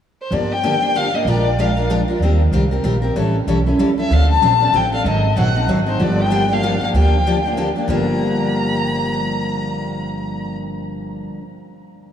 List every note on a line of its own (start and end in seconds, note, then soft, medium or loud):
0.21 0.35 C5 medium
0.31 1.07 G1 medium
0.31 0.51 D3 medium
0.31 0.51 F3 medium
0.31 0.51 A#3 medium
0.31 0.51 D4 medium
0.31 0.52 G4 medium
0.31 0.53 D5 medium
0.52 0.98 G5 loud
0.64 0.74 D3 medium
0.64 0.74 F3 medium
0.64 0.74 A#3 medium
0.64 0.74 D4 medium
0.64 0.74 G4 medium
0.82 0.94 A#3 soft
0.82 0.94 D4 soft
0.82 0.94 G4 medium
0.95 1.05 D3 medium
0.95 1.06 F3 medium
0.95 1.06 A#3 medium
0.95 1.06 D4 medium
0.95 1.06 G4 medium
0.95 1.16 F5 medium
1.14 1.27 A#3 soft
1.14 1.26 D4 soft
1.14 1.26 G4 soft
1.14 1.29 D#5 medium
1.25 2.01 A#1 medium
1.25 1.46 F3 medium
1.25 1.46 G#3 medium
1.25 1.46 D4 medium
1.25 1.46 F4 medium
1.25 1.47 A#4 medium
1.25 1.62 D5 medium
1.59 1.69 F3 medium
1.59 1.69 G#3 medium
1.59 1.69 D4 medium
1.59 1.69 F4 medium
1.59 1.69 A#4 medium
1.59 1.90 F5 medium
1.77 1.89 D4 soft
1.77 1.90 F4 medium
1.77 1.89 A#4 medium
1.90 2.00 F3 medium
1.90 2.00 G#3 medium
1.90 2.00 D4 medium
1.90 2.01 F4 medium
1.90 2.01 A#4 medium
2.08 2.22 D4 soft
2.08 2.21 F4 soft
2.08 2.20 A#4 medium
2.20 2.45 D#2 medium
2.20 2.41 D#3 medium
2.20 2.41 G3 medium
2.20 2.41 C4 medium
2.20 2.42 G4 medium
2.24 2.42 A#4 medium
2.52 2.79 C2 medium
2.52 2.63 D#3 medium
2.52 2.63 G3 medium
2.52 2.63 C4 medium
2.52 2.64 G4 medium
2.52 2.63 A#4 medium
2.71 2.83 C4 soft
2.71 2.84 G4 soft
2.71 2.84 A#4 medium
2.83 3.10 A#1 medium
2.83 2.94 D#3 medium
2.83 2.94 G3 medium
2.83 2.94 C4 medium
2.83 2.95 G4 medium
2.83 2.95 A#4 medium
3.02 3.16 C4 soft
3.02 3.15 G4 soft
3.02 3.15 A#4 soft
3.16 3.41 A1 medium
3.16 3.35 E3 medium
3.16 3.35 G3 medium
3.16 3.35 C#4 medium
3.16 3.35 E4 medium
3.16 3.36 A4 medium
3.47 3.74 B1 medium
3.47 3.58 E3 medium
3.47 3.58 G3 medium
3.47 3.58 C#4 medium
3.47 3.58 E4 medium
3.47 3.58 A4 medium
3.66 3.79 C#4 soft
3.66 3.79 E4 soft
3.66 3.78 A4 soft
3.78 4.05 C#2 medium
3.78 3.89 E3 medium
3.78 3.89 G3 medium
3.78 3.90 C#4 medium
3.78 3.90 E4 medium
3.78 3.90 A4 medium
3.98 4.11 C#4 soft
3.98 4.11 E4 soft
3.98 4.10 A4 soft
3.98 4.14 E5 medium
4.10 4.35 D2 medium
4.10 4.30 D3 medium
4.10 4.30 F3 medium
4.10 4.30 C4 medium
4.10 4.31 D4 medium
4.10 4.31 A4 medium
4.10 4.30 F5 medium
4.31 4.77 A5 medium
4.42 4.69 A#1 medium
4.42 4.52 D3 medium
4.42 4.53 F3 medium
4.42 4.53 C4 medium
4.42 4.53 D4 medium
4.42 4.53 A4 medium
4.60 4.73 C4 soft
4.60 4.73 D4 soft
4.60 4.73 A4 medium
4.73 5.00 A1 medium
4.73 4.84 D3 medium
4.73 4.84 F3 medium
4.73 4.84 C4 medium
4.73 4.84 D4 medium
4.73 4.84 A4 medium
4.73 4.93 G5 medium
4.92 5.05 C4 soft
4.92 5.05 D4 soft
4.92 5.05 A4 soft
4.92 5.05 F5 medium
5.04 5.30 G#1 medium
5.04 5.25 D#3 medium
5.04 5.25 F#3 medium
5.04 5.25 C4 medium
5.04 5.25 D#4 medium
5.04 5.25 G#4 medium
5.04 5.35 D#5 medium
5.36 5.63 A#1 medium
5.36 5.47 D#3 medium
5.36 5.47 F#3 medium
5.36 5.47 C4 medium
5.36 5.47 D#4 medium
5.36 5.47 G#4 medium
5.36 5.67 F#5 medium
5.55 5.68 C4 soft
5.55 5.68 D#4 soft
5.55 5.67 G#4 soft
5.68 5.95 G#1 medium
5.68 5.79 D#3 medium
5.68 5.79 F#3 medium
5.68 5.79 C4 medium
5.68 5.79 D#4 medium
5.68 5.79 G#4 medium
5.86 6.00 C4 soft
5.86 6.00 D#4 soft
5.86 5.99 G#4 soft
5.86 6.04 C5 medium
5.99 6.75 G1 medium
5.99 6.19 D3 medium
5.99 6.19 F3 medium
5.99 6.19 A#3 medium
5.99 6.19 D4 medium
5.99 6.20 G4 medium
5.99 6.22 D5 medium
6.21 6.54 G5 medium
6.30 6.41 D3 medium
6.30 6.42 F3 medium
6.30 6.42 A#3 medium
6.30 6.42 D4 medium
6.30 6.42 G4 medium
6.49 6.62 A#3 soft
6.49 6.62 D4 soft
6.49 6.62 G4 medium
6.49 6.82 F5 medium
6.63 6.73 D3 medium
6.63 6.73 F3 medium
6.63 6.74 A#3 medium
6.63 6.74 D4 medium
6.63 6.74 G4 medium
6.81 6.94 A#3 soft
6.81 6.94 D4 soft
6.81 6.94 G4 medium
6.81 6.89 F5 medium
6.93 7.69 D2 medium
6.93 7.14 D3 medium
6.93 7.14 F3 medium
6.93 7.14 A#3 medium
6.93 7.14 D4 medium
6.93 7.14 G4 medium
6.93 7.73 G5 medium
7.26 7.36 D3 medium
7.26 7.37 F3 medium
7.26 7.37 A#3 medium
7.26 7.37 D4 medium
7.26 7.37 G4 medium
7.46 7.56 A#3 soft
7.46 7.57 D4 soft
7.46 7.57 G4 soft
7.57 7.68 D3 medium
7.57 7.68 F3 medium
7.57 7.68 A#3 medium
7.57 7.68 D4 medium
7.57 7.68 G4 medium
7.76 7.89 A#3 soft
7.76 7.89 D4 soft
7.76 7.88 G4 soft
7.88 11.23 G1 medium
7.88 11.38 G2 medium
7.88 11.39 D3 medium
7.88 11.40 F3 medium
7.88 11.40 A#3 medium
7.88 11.40 D4 medium
7.88 11.41 G4 medium
7.88 10.54 A#5 medium